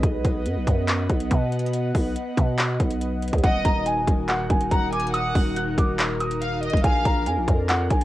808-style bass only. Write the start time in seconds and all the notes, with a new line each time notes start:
0.03 B1
0.25 B1
0.46 F#2
0.56 B1
0.67 F#2
1.10 B1
1.31 B2
1.95 B1
2.37 B2
2.80 B1
3.33 D#2
3.44 D#1
3.65 D#1
4.07 D#1
4.50 D#1
4.71 D#1
5.35 D#1
5.78 D#1
6.73 D#1
6.84 A#1
7.05 A#1
7.27 F2
7.37 A#1
7.48 F2
7.91 A#1